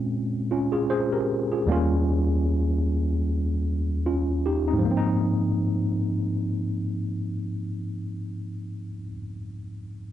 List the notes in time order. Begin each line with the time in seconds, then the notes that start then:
Already playing: A#2 G#3 C4 C#4 F4
0.51 C#4 F4
0.72 F4 G#4
0.90 G#4 C5
1.12 G4 A#4
1.52 F4 G#4
1.66 D#2 G3 A#3
1.71 C#4 F4
4.06 C#4 F4
4.46 D#4 G4
4.68 C4 D#4
4.73 G#2
4.79 F3
4.85 A#3
4.91 C4
4.97 D#4